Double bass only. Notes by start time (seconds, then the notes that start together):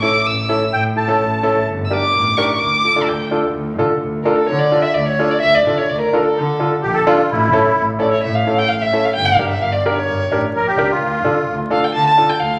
0.26 A1
0.72 A2
1.20 A1
1.55 A1
1.67 G1
2.14 A1
2.61 D2
3.08 D2
3.44 D2
3.55 D2
3.79 D3
4.02 D2
4.49 D3
4.96 D2
5.43 D2
5.67 D3
5.90 D2
6.37 D3
6.83 A#1
7.30 A1
7.53 A2
7.77 A1
8.23 A2
8.69 A1
9.16 G1
9.38 G2
9.62 G1
10.08 G2
10.32 A1
10.55 A#1
10.78 C#2
11.02 D2
11.25 D3
11.49 D2
11.95 D3
12.41 D2